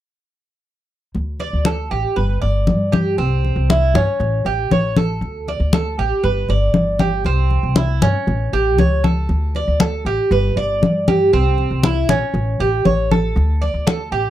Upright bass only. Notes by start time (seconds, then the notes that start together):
1.15 D2
1.53 D2
1.91 A1
2.17 G1
2.43 G1
2.68 G2
3.18 C2
3.56 C2
3.94 G2
4.20 A1
4.45 A1
4.71 A1
5.21 D2
5.60 D2
5.98 A1
6.24 G1
6.49 G1
6.74 G1
7.25 C2
7.63 C2
8.02 G2
8.27 A1
8.53 A1
8.78 C#2
9.29 D2
9.68 D2
10.05 A1
10.31 G1
10.56 G1
10.82 G2
11.33 C2
11.71 C2
12.09 A#1
12.34 A1
12.60 A1
12.85 A1
13.36 D2
13.74 D2
14.12 A1